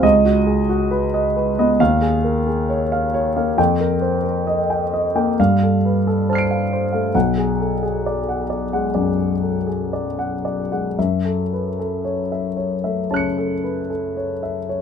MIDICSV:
0, 0, Header, 1, 2, 480
1, 0, Start_track
1, 0, Tempo, 890208
1, 19, Time_signature, 4, 2, 24, 8
1, 4820, Tempo, 961538
1, 5300, Tempo, 1063830
1, 7518, End_track
2, 0, Start_track
2, 0, Title_t, "Grand piano"
2, 0, Program_c, 0, 0
2, 0, Control_c, 0, 64, 127
2, 14, Note_on_c, 0, 37, 48
2, 17, Note_on_c, 0, 75, 61
2, 29, Control_c, 0, 64, 0
2, 125, Control_c, 0, 64, 127
2, 137, Note_on_c, 0, 66, 38
2, 204, Note_off_c, 0, 75, 0
2, 250, Note_on_c, 0, 68, 34
2, 323, Note_off_c, 0, 66, 0
2, 369, Note_off_c, 0, 68, 0
2, 373, Note_on_c, 0, 66, 41
2, 490, Note_on_c, 0, 71, 42
2, 561, Note_off_c, 0, 66, 0
2, 615, Note_on_c, 0, 75, 40
2, 680, Note_off_c, 0, 71, 0
2, 735, Note_on_c, 0, 71, 40
2, 803, Note_off_c, 0, 75, 0
2, 857, Note_on_c, 0, 59, 38
2, 858, Note_on_c, 0, 75, 46
2, 924, Note_off_c, 0, 71, 0
2, 944, Note_off_c, 0, 37, 0
2, 971, Note_on_c, 0, 39, 50
2, 971, Note_on_c, 0, 77, 61
2, 973, Note_off_c, 0, 59, 0
2, 973, Note_off_c, 0, 75, 0
2, 978, Control_c, 0, 64, 0
2, 1071, Control_c, 0, 64, 127
2, 1087, Note_on_c, 0, 68, 37
2, 1161, Note_off_c, 0, 77, 0
2, 1208, Note_on_c, 0, 70, 33
2, 1278, Note_off_c, 0, 68, 0
2, 1327, Note_off_c, 0, 70, 0
2, 1331, Note_on_c, 0, 68, 36
2, 1453, Note_on_c, 0, 73, 39
2, 1522, Note_off_c, 0, 68, 0
2, 1575, Note_on_c, 0, 77, 42
2, 1644, Note_off_c, 0, 73, 0
2, 1693, Note_on_c, 0, 73, 43
2, 1766, Note_off_c, 0, 77, 0
2, 1814, Note_on_c, 0, 58, 35
2, 1816, Note_on_c, 0, 77, 37
2, 1884, Note_off_c, 0, 73, 0
2, 1911, Note_off_c, 0, 39, 0
2, 1929, Note_on_c, 0, 41, 47
2, 1931, Note_on_c, 0, 79, 50
2, 1932, Note_off_c, 0, 58, 0
2, 1933, Note_off_c, 0, 77, 0
2, 1941, Control_c, 0, 64, 0
2, 2014, Control_c, 0, 64, 127
2, 2052, Note_on_c, 0, 70, 38
2, 2121, Note_off_c, 0, 79, 0
2, 2166, Note_on_c, 0, 72, 31
2, 2241, Note_off_c, 0, 70, 0
2, 2285, Note_on_c, 0, 70, 35
2, 2286, Note_off_c, 0, 72, 0
2, 2410, Note_on_c, 0, 75, 36
2, 2480, Note_off_c, 0, 70, 0
2, 2535, Note_on_c, 0, 79, 36
2, 2606, Note_off_c, 0, 75, 0
2, 2661, Note_on_c, 0, 75, 35
2, 2731, Note_off_c, 0, 79, 0
2, 2779, Note_on_c, 0, 58, 39
2, 2781, Note_on_c, 0, 79, 37
2, 2857, Note_off_c, 0, 75, 0
2, 2881, Note_off_c, 0, 41, 0
2, 2903, Note_off_c, 0, 58, 0
2, 2904, Note_off_c, 0, 79, 0
2, 2910, Note_on_c, 0, 43, 41
2, 2910, Note_on_c, 0, 77, 52
2, 2912, Control_c, 0, 64, 0
2, 2992, Control_c, 0, 64, 127
2, 3035, Note_on_c, 0, 69, 34
2, 3104, Note_off_c, 0, 77, 0
2, 3156, Note_on_c, 0, 71, 29
2, 3225, Note_off_c, 0, 69, 0
2, 3272, Note_off_c, 0, 71, 0
2, 3274, Note_on_c, 0, 69, 35
2, 3393, Note_on_c, 0, 72, 34
2, 3395, Note_on_c, 0, 81, 26
2, 3412, Note_on_c, 0, 89, 26
2, 3426, Note_on_c, 0, 96, 26
2, 3442, Note_on_c, 0, 98, 25
2, 3458, Note_off_c, 0, 69, 0
2, 3509, Note_on_c, 0, 77, 39
2, 3575, Note_off_c, 0, 72, 0
2, 3630, Note_on_c, 0, 72, 36
2, 3690, Note_off_c, 0, 77, 0
2, 3735, Note_on_c, 0, 77, 34
2, 3737, Note_on_c, 0, 57, 31
2, 3810, Note_off_c, 0, 72, 0
2, 3833, Note_off_c, 0, 43, 0
2, 3835, Note_off_c, 0, 81, 0
2, 3843, Note_off_c, 0, 89, 0
2, 3850, Note_off_c, 0, 96, 0
2, 3852, Note_off_c, 0, 77, 0
2, 3852, Note_on_c, 0, 35, 39
2, 3853, Note_off_c, 0, 57, 0
2, 3853, Note_on_c, 0, 78, 43
2, 3858, Note_off_c, 0, 98, 0
2, 3862, Control_c, 0, 64, 0
2, 3945, Control_c, 0, 64, 127
2, 3978, Note_on_c, 0, 68, 34
2, 4044, Note_off_c, 0, 78, 0
2, 4098, Note_on_c, 0, 69, 26
2, 4169, Note_off_c, 0, 68, 0
2, 4217, Note_off_c, 0, 69, 0
2, 4220, Note_on_c, 0, 68, 33
2, 4348, Note_on_c, 0, 74, 32
2, 4412, Note_off_c, 0, 68, 0
2, 4469, Note_on_c, 0, 78, 30
2, 4535, Note_off_c, 0, 74, 0
2, 4583, Note_on_c, 0, 74, 29
2, 4655, Note_off_c, 0, 78, 0
2, 4708, Note_on_c, 0, 78, 33
2, 4709, Note_on_c, 0, 56, 31
2, 4773, Note_off_c, 0, 74, 0
2, 4798, Note_off_c, 0, 35, 0
2, 4823, Note_on_c, 0, 74, 32
2, 4826, Note_on_c, 0, 42, 28
2, 4893, Note_off_c, 0, 78, 0
2, 4894, Note_off_c, 0, 56, 0
2, 4939, Note_on_c, 0, 68, 28
2, 5007, Note_off_c, 0, 74, 0
2, 5008, Note_off_c, 0, 42, 0
2, 5064, Note_on_c, 0, 69, 24
2, 5128, Note_off_c, 0, 68, 0
2, 5180, Note_off_c, 0, 69, 0
2, 5183, Note_on_c, 0, 68, 27
2, 5314, Note_on_c, 0, 74, 29
2, 5373, Note_off_c, 0, 68, 0
2, 5430, Note_on_c, 0, 78, 31
2, 5494, Note_off_c, 0, 74, 0
2, 5547, Note_on_c, 0, 74, 29
2, 5615, Note_off_c, 0, 78, 0
2, 5668, Note_on_c, 0, 56, 24
2, 5670, Note_on_c, 0, 78, 28
2, 5737, Note_off_c, 0, 74, 0
2, 5786, Note_off_c, 0, 56, 0
2, 5787, Note_off_c, 0, 78, 0
2, 5789, Control_c, 0, 64, 0
2, 5790, Note_on_c, 0, 42, 33
2, 5790, Note_on_c, 0, 76, 36
2, 5877, Control_c, 0, 64, 127
2, 5909, Note_on_c, 0, 69, 27
2, 5982, Note_off_c, 0, 76, 0
2, 6035, Note_on_c, 0, 71, 23
2, 6100, Note_off_c, 0, 69, 0
2, 6150, Note_off_c, 0, 71, 0
2, 6154, Note_on_c, 0, 69, 27
2, 6268, Note_on_c, 0, 73, 29
2, 6338, Note_off_c, 0, 69, 0
2, 6391, Note_on_c, 0, 76, 28
2, 6454, Note_off_c, 0, 73, 0
2, 6504, Note_on_c, 0, 73, 26
2, 6575, Note_off_c, 0, 76, 0
2, 6626, Note_on_c, 0, 76, 30
2, 6627, Note_on_c, 0, 57, 26
2, 6693, Note_off_c, 0, 73, 0
2, 6726, Note_off_c, 0, 42, 0
2, 6746, Note_on_c, 0, 49, 26
2, 6746, Note_on_c, 0, 73, 27
2, 6746, Note_on_c, 0, 81, 21
2, 6761, Note_on_c, 0, 90, 20
2, 6773, Note_on_c, 0, 97, 21
2, 6816, Note_off_c, 0, 76, 0
2, 6817, Note_off_c, 0, 57, 0
2, 6869, Note_on_c, 0, 69, 25
2, 6936, Note_off_c, 0, 73, 0
2, 6937, Note_off_c, 0, 49, 0
2, 6986, Note_on_c, 0, 71, 22
2, 7057, Note_off_c, 0, 69, 0
2, 7102, Note_off_c, 0, 71, 0
2, 7105, Note_on_c, 0, 69, 26
2, 7225, Note_on_c, 0, 73, 28
2, 7291, Note_off_c, 0, 69, 0
2, 7343, Note_on_c, 0, 76, 26
2, 7412, Note_off_c, 0, 73, 0
2, 7462, Note_on_c, 0, 73, 30
2, 7518, Note_off_c, 0, 73, 0
2, 7518, Note_off_c, 0, 76, 0
2, 7518, Note_off_c, 0, 81, 0
2, 7518, Note_off_c, 0, 90, 0
2, 7518, Note_off_c, 0, 97, 0
2, 7518, End_track
0, 0, End_of_file